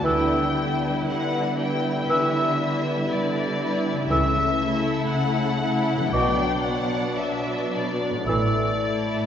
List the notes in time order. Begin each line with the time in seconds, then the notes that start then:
Already playing: D3 B3 E4
0.00 E3 G3 B4 E5 G5
0.04 D2 D3 B3 E4 B4 E6
0.56 G3 E4 B4
1.06 D3 F#5
1.59 G3 E4 B4 G5
2.09 D3 E3 B4 E5 E6
2.60 G3 E4 B4
3.10 D3 D5
3.61 G3 E4 B4
3.93 C#3
3.97 A3
4.02 E4
4.06 C#2 E5
4.10 C#3 E3 A3 A4 E6
4.61 A3 E4 A4
5.09 C#3 F#5
5.61 A3 E4 A4
5.95 B2
6.00 F#3
6.04 D4
6.08 F#3 B3 D4 F#4 B4 G5
6.13 B1 B2 F#3 D4 D5 D6
6.63 F#3 B3 D5 F#5
6.67 D4
7.16 B2 E5
7.72 F#3 B3 D4 D5
8.10 A2
8.15 A3
8.20 E4
8.24 A1 A4 E5 E6
8.29 A2 E3 A3 E4 D5
8.83 A3 E4 A4